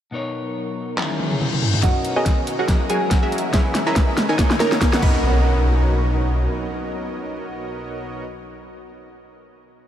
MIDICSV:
0, 0, Header, 1, 11, 480
1, 0, Start_track
1, 0, Key_signature, 5, "major"
1, 0, Tempo, 425532
1, 148, Time_signature, 4, 2, 24, 8
1, 11141, End_track
2, 0, Start_track
2, 0, Title_t, "Synth pluck"
2, 0, Program_c, 0, 84
2, 2067, Note_on_c, 0, 78, 96
2, 2068, Note_on_c, 0, 66, 74
2, 2315, Note_off_c, 0, 78, 0
2, 2316, Note_off_c, 0, 66, 0
2, 2441, Note_on_c, 0, 68, 74
2, 2442, Note_on_c, 0, 80, 89
2, 2687, Note_off_c, 0, 68, 0
2, 2688, Note_off_c, 0, 80, 0
2, 3269, Note_on_c, 0, 68, 78
2, 3270, Note_on_c, 0, 80, 91
2, 3903, Note_off_c, 0, 68, 0
2, 3903, Note_off_c, 0, 80, 0
2, 3987, Note_on_c, 0, 68, 76
2, 3988, Note_on_c, 0, 80, 99
2, 4236, Note_off_c, 0, 68, 0
2, 4236, Note_off_c, 0, 80, 0
2, 4360, Note_on_c, 0, 70, 76
2, 4361, Note_on_c, 0, 82, 94
2, 4607, Note_off_c, 0, 70, 0
2, 4607, Note_off_c, 0, 82, 0
2, 5188, Note_on_c, 0, 70, 78
2, 5189, Note_on_c, 0, 82, 92
2, 5668, Note_off_c, 0, 70, 0
2, 5668, Note_off_c, 0, 82, 0
2, 5669, Note_on_c, 0, 83, 91
2, 9301, Note_off_c, 0, 83, 0
2, 11141, End_track
3, 0, Start_track
3, 0, Title_t, "Synth pluck"
3, 0, Program_c, 1, 84
3, 2068, Note_on_c, 1, 75, 78
3, 2409, Note_off_c, 1, 75, 0
3, 2440, Note_on_c, 1, 75, 102
3, 2888, Note_off_c, 1, 75, 0
3, 2921, Note_on_c, 1, 78, 86
3, 3147, Note_off_c, 1, 78, 0
3, 3268, Note_on_c, 1, 80, 98
3, 3609, Note_off_c, 1, 80, 0
3, 3640, Note_on_c, 1, 76, 100
3, 3962, Note_off_c, 1, 76, 0
3, 3987, Note_on_c, 1, 76, 80
3, 4328, Note_off_c, 1, 76, 0
3, 4361, Note_on_c, 1, 64, 104
3, 4809, Note_off_c, 1, 64, 0
3, 4841, Note_on_c, 1, 80, 86
3, 5067, Note_off_c, 1, 80, 0
3, 5189, Note_on_c, 1, 82, 98
3, 5529, Note_off_c, 1, 82, 0
3, 5561, Note_on_c, 1, 78, 104
3, 5668, Note_off_c, 1, 78, 0
3, 5668, Note_on_c, 1, 75, 97
3, 9300, Note_off_c, 1, 75, 0
3, 11141, End_track
4, 0, Start_track
4, 0, Title_t, "Supersaw synth"
4, 0, Program_c, 2, 81
4, 2068, Note_on_c, 2, 59, 70
4, 2069, Note_on_c, 2, 66, 65
4, 2069, Note_on_c, 2, 70, 66
4, 2069, Note_on_c, 2, 73, 64
4, 2069, Note_on_c, 2, 75, 78
4, 2409, Note_off_c, 2, 59, 0
4, 2409, Note_off_c, 2, 66, 0
4, 2409, Note_off_c, 2, 70, 0
4, 2409, Note_off_c, 2, 73, 0
4, 2409, Note_off_c, 2, 75, 0
4, 2440, Note_on_c, 2, 59, 89
4, 2440, Note_on_c, 2, 66, 82
4, 2440, Note_on_c, 2, 70, 82
4, 2440, Note_on_c, 2, 73, 84
4, 2440, Note_on_c, 2, 75, 101
4, 2888, Note_off_c, 2, 59, 0
4, 2888, Note_off_c, 2, 70, 0
4, 2888, Note_off_c, 2, 73, 0
4, 2888, Note_off_c, 2, 75, 0
4, 2889, Note_off_c, 2, 66, 0
4, 2922, Note_on_c, 2, 54, 76
4, 2922, Note_on_c, 2, 70, 68
4, 2923, Note_on_c, 2, 66, 67
4, 2923, Note_on_c, 2, 68, 69
4, 2923, Note_on_c, 2, 78, 82
4, 3147, Note_off_c, 2, 54, 0
4, 3147, Note_off_c, 2, 66, 0
4, 3147, Note_off_c, 2, 68, 0
4, 3147, Note_off_c, 2, 70, 0
4, 3147, Note_off_c, 2, 78, 0
4, 3268, Note_on_c, 2, 68, 76
4, 3268, Note_on_c, 2, 80, 96
4, 3269, Note_on_c, 2, 54, 85
4, 3269, Note_on_c, 2, 66, 79
4, 3269, Note_on_c, 2, 70, 79
4, 3609, Note_off_c, 2, 54, 0
4, 3609, Note_off_c, 2, 66, 0
4, 3609, Note_off_c, 2, 68, 0
4, 3609, Note_off_c, 2, 70, 0
4, 3609, Note_off_c, 2, 80, 0
4, 3641, Note_on_c, 2, 66, 77
4, 3641, Note_on_c, 2, 68, 80
4, 3641, Note_on_c, 2, 70, 80
4, 3641, Note_on_c, 2, 76, 92
4, 3642, Note_on_c, 2, 54, 86
4, 3962, Note_off_c, 2, 66, 0
4, 3962, Note_off_c, 2, 68, 0
4, 3962, Note_off_c, 2, 70, 0
4, 3962, Note_off_c, 2, 76, 0
4, 3963, Note_off_c, 2, 54, 0
4, 3988, Note_on_c, 2, 61, 72
4, 3988, Note_on_c, 2, 68, 65
4, 3988, Note_on_c, 2, 71, 65
4, 3988, Note_on_c, 2, 76, 84
4, 3989, Note_on_c, 2, 75, 66
4, 4329, Note_off_c, 2, 61, 0
4, 4329, Note_off_c, 2, 68, 0
4, 4329, Note_off_c, 2, 71, 0
4, 4329, Note_off_c, 2, 75, 0
4, 4329, Note_off_c, 2, 76, 0
4, 4361, Note_on_c, 2, 61, 90
4, 4361, Note_on_c, 2, 71, 86
4, 4362, Note_on_c, 2, 68, 84
4, 4362, Note_on_c, 2, 75, 84
4, 4362, Note_on_c, 2, 76, 104
4, 4809, Note_off_c, 2, 61, 0
4, 4809, Note_off_c, 2, 68, 0
4, 4809, Note_off_c, 2, 71, 0
4, 4809, Note_off_c, 2, 75, 0
4, 4809, Note_off_c, 2, 76, 0
4, 4840, Note_on_c, 2, 51, 76
4, 4840, Note_on_c, 2, 63, 67
4, 4840, Note_on_c, 2, 70, 70
4, 4840, Note_on_c, 2, 73, 67
4, 4841, Note_on_c, 2, 80, 85
4, 5066, Note_off_c, 2, 51, 0
4, 5066, Note_off_c, 2, 63, 0
4, 5066, Note_off_c, 2, 70, 0
4, 5066, Note_off_c, 2, 73, 0
4, 5067, Note_off_c, 2, 80, 0
4, 5188, Note_on_c, 2, 51, 86
4, 5188, Note_on_c, 2, 63, 84
4, 5188, Note_on_c, 2, 82, 98
4, 5189, Note_on_c, 2, 70, 82
4, 5189, Note_on_c, 2, 73, 80
4, 5529, Note_off_c, 2, 51, 0
4, 5529, Note_off_c, 2, 63, 0
4, 5529, Note_off_c, 2, 70, 0
4, 5529, Note_off_c, 2, 73, 0
4, 5529, Note_off_c, 2, 82, 0
4, 5563, Note_on_c, 2, 51, 91
4, 5563, Note_on_c, 2, 63, 81
4, 5563, Note_on_c, 2, 70, 83
4, 5563, Note_on_c, 2, 73, 83
4, 5564, Note_on_c, 2, 78, 100
4, 5657, Note_off_c, 2, 70, 0
4, 5657, Note_off_c, 2, 73, 0
4, 5669, Note_off_c, 2, 51, 0
4, 5669, Note_off_c, 2, 63, 0
4, 5669, Note_off_c, 2, 78, 0
4, 5670, Note_on_c, 2, 73, 78
4, 5671, Note_on_c, 2, 59, 83
4, 5671, Note_on_c, 2, 66, 75
4, 5671, Note_on_c, 2, 70, 82
4, 5671, Note_on_c, 2, 75, 91
4, 9302, Note_off_c, 2, 73, 0
4, 9303, Note_off_c, 2, 59, 0
4, 9303, Note_off_c, 2, 66, 0
4, 9303, Note_off_c, 2, 70, 0
4, 9303, Note_off_c, 2, 75, 0
4, 11141, End_track
5, 0, Start_track
5, 0, Title_t, "Clean electric guitar"
5, 0, Program_c, 3, 27
5, 125, Note_on_c, 3, 47, 71
5, 135, Note_on_c, 3, 59, 66
5, 147, Note_on_c, 3, 63, 65
5, 158, Note_on_c, 3, 70, 66
5, 170, Note_on_c, 3, 73, 80
5, 1053, Note_off_c, 3, 47, 0
5, 1059, Note_off_c, 3, 59, 0
5, 1065, Note_off_c, 3, 63, 0
5, 1070, Note_off_c, 3, 70, 0
5, 1076, Note_off_c, 3, 73, 0
5, 1085, Note_on_c, 3, 54, 71
5, 1096, Note_on_c, 3, 61, 67
5, 1108, Note_on_c, 3, 64, 67
5, 1120, Note_on_c, 3, 68, 68
5, 1131, Note_on_c, 3, 70, 82
5, 2014, Note_off_c, 3, 54, 0
5, 2019, Note_off_c, 3, 61, 0
5, 2025, Note_off_c, 3, 64, 0
5, 2031, Note_off_c, 3, 68, 0
5, 2036, Note_off_c, 3, 70, 0
5, 2045, Note_on_c, 3, 47, 76
5, 2056, Note_on_c, 3, 59, 68
5, 2067, Note_on_c, 3, 61, 69
5, 2077, Note_on_c, 3, 63, 69
5, 2089, Note_on_c, 3, 70, 86
5, 2973, Note_off_c, 3, 47, 0
5, 2979, Note_off_c, 3, 59, 0
5, 2984, Note_off_c, 3, 61, 0
5, 2990, Note_off_c, 3, 63, 0
5, 2996, Note_off_c, 3, 70, 0
5, 3004, Note_on_c, 3, 54, 80
5, 3016, Note_on_c, 3, 61, 72
5, 3028, Note_on_c, 3, 64, 71
5, 3039, Note_on_c, 3, 68, 72
5, 3051, Note_on_c, 3, 70, 84
5, 3933, Note_off_c, 3, 54, 0
5, 3939, Note_off_c, 3, 61, 0
5, 3945, Note_off_c, 3, 64, 0
5, 3950, Note_off_c, 3, 68, 0
5, 3956, Note_off_c, 3, 70, 0
5, 3964, Note_on_c, 3, 49, 77
5, 3976, Note_on_c, 3, 61, 74
5, 3998, Note_on_c, 3, 64, 73
5, 4008, Note_on_c, 3, 71, 86
5, 4893, Note_off_c, 3, 49, 0
5, 4899, Note_off_c, 3, 61, 0
5, 4910, Note_off_c, 3, 64, 0
5, 4915, Note_off_c, 3, 71, 0
5, 4926, Note_on_c, 3, 51, 80
5, 4936, Note_on_c, 3, 58, 73
5, 4948, Note_on_c, 3, 61, 74
5, 4959, Note_on_c, 3, 66, 74
5, 4971, Note_on_c, 3, 75, 92
5, 5635, Note_on_c, 3, 47, 83
5, 5647, Note_off_c, 3, 58, 0
5, 5652, Note_on_c, 3, 59, 78
5, 5655, Note_off_c, 3, 61, 0
5, 5657, Note_off_c, 3, 51, 0
5, 5668, Note_on_c, 3, 61, 78
5, 5673, Note_off_c, 3, 66, 0
5, 5679, Note_off_c, 3, 75, 0
5, 5686, Note_on_c, 3, 63, 81
5, 5703, Note_on_c, 3, 66, 97
5, 9267, Note_off_c, 3, 47, 0
5, 9283, Note_off_c, 3, 59, 0
5, 9300, Note_off_c, 3, 61, 0
5, 9318, Note_off_c, 3, 63, 0
5, 9335, Note_off_c, 3, 66, 0
5, 11141, End_track
6, 0, Start_track
6, 0, Title_t, "Analog synth pad"
6, 0, Program_c, 4, 89
6, 148, Note_on_c, 4, 59, 64
6, 148, Note_on_c, 4, 63, 65
6, 148, Note_on_c, 4, 70, 76
6, 149, Note_on_c, 4, 54, 69
6, 1094, Note_off_c, 4, 54, 0
6, 1098, Note_off_c, 4, 59, 0
6, 1098, Note_off_c, 4, 63, 0
6, 1098, Note_off_c, 4, 70, 0
6, 1108, Note_on_c, 4, 54, 73
6, 1108, Note_on_c, 4, 58, 65
6, 1108, Note_on_c, 4, 64, 66
6, 1108, Note_on_c, 4, 68, 80
6, 2058, Note_off_c, 4, 54, 0
6, 2058, Note_off_c, 4, 58, 0
6, 2058, Note_off_c, 4, 64, 0
6, 2058, Note_off_c, 4, 68, 0
6, 2070, Note_on_c, 4, 70, 67
6, 2071, Note_on_c, 4, 51, 71
6, 2071, Note_on_c, 4, 59, 65
6, 2071, Note_on_c, 4, 66, 85
6, 3019, Note_off_c, 4, 70, 0
6, 3020, Note_off_c, 4, 51, 0
6, 3020, Note_off_c, 4, 59, 0
6, 3028, Note_on_c, 4, 56, 70
6, 3030, Note_on_c, 4, 52, 77
6, 3030, Note_on_c, 4, 58, 66
6, 3970, Note_off_c, 4, 66, 0
6, 3979, Note_off_c, 4, 56, 0
6, 3979, Note_off_c, 4, 58, 0
6, 3987, Note_on_c, 4, 59, 68
6, 3988, Note_on_c, 4, 49, 73
6, 4930, Note_off_c, 4, 52, 0
6, 4938, Note_off_c, 4, 59, 0
6, 5651, Note_off_c, 4, 49, 0
6, 5667, Note_on_c, 4, 54, 71
6, 5667, Note_on_c, 4, 63, 86
6, 5667, Note_on_c, 4, 66, 73
6, 5668, Note_on_c, 4, 47, 77
6, 9299, Note_off_c, 4, 54, 0
6, 9299, Note_off_c, 4, 63, 0
6, 9299, Note_off_c, 4, 66, 0
6, 9300, Note_off_c, 4, 47, 0
6, 11141, End_track
7, 0, Start_track
7, 0, Title_t, "808-style bass"
7, 0, Program_c, 5, 38
7, 2068, Note_on_c, 5, 35, 90
7, 3006, Note_off_c, 5, 35, 0
7, 3027, Note_on_c, 5, 30, 91
7, 3966, Note_off_c, 5, 30, 0
7, 3988, Note_on_c, 5, 37, 92
7, 4926, Note_off_c, 5, 37, 0
7, 4947, Note_on_c, 5, 39, 94
7, 5661, Note_off_c, 5, 39, 0
7, 5667, Note_on_c, 5, 35, 100
7, 7302, Note_off_c, 5, 35, 0
7, 11141, End_track
8, 0, Start_track
8, 0, Title_t, "Impact"
8, 0, Program_c, 6, 103
8, 5669, Note_on_c, 6, 60, 67
8, 9346, Note_off_c, 6, 60, 0
8, 11141, End_track
9, 0, Start_track
9, 0, Title_t, "Reverse cymbal"
9, 0, Program_c, 7, 119
9, 1108, Note_on_c, 7, 60, 71
9, 2068, Note_off_c, 7, 60, 0
9, 11141, End_track
10, 0, Start_track
10, 0, Title_t, "Riser"
10, 0, Program_c, 8, 103
10, 2068, Note_on_c, 8, 60, 75
10, 5668, Note_off_c, 8, 60, 0
10, 11141, End_track
11, 0, Start_track
11, 0, Title_t, "Drums"
11, 1108, Note_on_c, 9, 39, 107
11, 1108, Note_on_c, 9, 48, 54
11, 1220, Note_off_c, 9, 39, 0
11, 1220, Note_off_c, 9, 48, 0
11, 1242, Note_on_c, 9, 48, 53
11, 1348, Note_off_c, 9, 48, 0
11, 1348, Note_on_c, 9, 48, 65
11, 1461, Note_off_c, 9, 48, 0
11, 1481, Note_on_c, 9, 47, 63
11, 1588, Note_off_c, 9, 47, 0
11, 1588, Note_on_c, 9, 47, 78
11, 1701, Note_off_c, 9, 47, 0
11, 1721, Note_on_c, 9, 47, 74
11, 1828, Note_on_c, 9, 45, 91
11, 1834, Note_off_c, 9, 47, 0
11, 1941, Note_off_c, 9, 45, 0
11, 1960, Note_on_c, 9, 45, 83
11, 2067, Note_on_c, 9, 36, 97
11, 2068, Note_on_c, 9, 38, 48
11, 2068, Note_on_c, 9, 42, 82
11, 2073, Note_off_c, 9, 45, 0
11, 2180, Note_off_c, 9, 36, 0
11, 2181, Note_off_c, 9, 38, 0
11, 2181, Note_off_c, 9, 42, 0
11, 2307, Note_on_c, 9, 42, 63
11, 2420, Note_off_c, 9, 42, 0
11, 2547, Note_on_c, 9, 36, 91
11, 2548, Note_on_c, 9, 38, 50
11, 2548, Note_on_c, 9, 42, 82
11, 2660, Note_off_c, 9, 36, 0
11, 2661, Note_off_c, 9, 38, 0
11, 2661, Note_off_c, 9, 42, 0
11, 2788, Note_on_c, 9, 42, 64
11, 2900, Note_off_c, 9, 42, 0
11, 3027, Note_on_c, 9, 36, 94
11, 3028, Note_on_c, 9, 38, 55
11, 3028, Note_on_c, 9, 42, 77
11, 3140, Note_off_c, 9, 36, 0
11, 3140, Note_off_c, 9, 38, 0
11, 3140, Note_off_c, 9, 42, 0
11, 3267, Note_on_c, 9, 42, 66
11, 3380, Note_off_c, 9, 42, 0
11, 3507, Note_on_c, 9, 38, 63
11, 3507, Note_on_c, 9, 42, 80
11, 3508, Note_on_c, 9, 36, 95
11, 3620, Note_off_c, 9, 36, 0
11, 3620, Note_off_c, 9, 38, 0
11, 3620, Note_off_c, 9, 42, 0
11, 3748, Note_on_c, 9, 42, 51
11, 3814, Note_off_c, 9, 42, 0
11, 3814, Note_on_c, 9, 42, 65
11, 3927, Note_off_c, 9, 42, 0
11, 3987, Note_on_c, 9, 38, 76
11, 3987, Note_on_c, 9, 42, 83
11, 3988, Note_on_c, 9, 36, 99
11, 4100, Note_off_c, 9, 38, 0
11, 4100, Note_off_c, 9, 42, 0
11, 4101, Note_off_c, 9, 36, 0
11, 4228, Note_on_c, 9, 38, 75
11, 4228, Note_on_c, 9, 42, 68
11, 4340, Note_off_c, 9, 38, 0
11, 4340, Note_off_c, 9, 42, 0
11, 4467, Note_on_c, 9, 36, 97
11, 4467, Note_on_c, 9, 38, 83
11, 4467, Note_on_c, 9, 42, 82
11, 4580, Note_off_c, 9, 36, 0
11, 4580, Note_off_c, 9, 38, 0
11, 4580, Note_off_c, 9, 42, 0
11, 4708, Note_on_c, 9, 38, 87
11, 4708, Note_on_c, 9, 42, 67
11, 4821, Note_off_c, 9, 38, 0
11, 4821, Note_off_c, 9, 42, 0
11, 4948, Note_on_c, 9, 36, 96
11, 4949, Note_on_c, 9, 38, 90
11, 4949, Note_on_c, 9, 42, 81
11, 5060, Note_off_c, 9, 36, 0
11, 5062, Note_off_c, 9, 38, 0
11, 5062, Note_off_c, 9, 42, 0
11, 5082, Note_on_c, 9, 38, 84
11, 5190, Note_off_c, 9, 38, 0
11, 5190, Note_on_c, 9, 38, 94
11, 5190, Note_on_c, 9, 42, 70
11, 5302, Note_off_c, 9, 38, 0
11, 5302, Note_off_c, 9, 42, 0
11, 5323, Note_on_c, 9, 38, 90
11, 5428, Note_on_c, 9, 36, 96
11, 5430, Note_off_c, 9, 38, 0
11, 5430, Note_on_c, 9, 38, 100
11, 5430, Note_on_c, 9, 42, 85
11, 5541, Note_off_c, 9, 36, 0
11, 5543, Note_off_c, 9, 38, 0
11, 5543, Note_off_c, 9, 42, 0
11, 5563, Note_on_c, 9, 38, 92
11, 5668, Note_on_c, 9, 36, 114
11, 5669, Note_on_c, 9, 49, 90
11, 5675, Note_off_c, 9, 38, 0
11, 5781, Note_off_c, 9, 36, 0
11, 5782, Note_off_c, 9, 49, 0
11, 11141, End_track
0, 0, End_of_file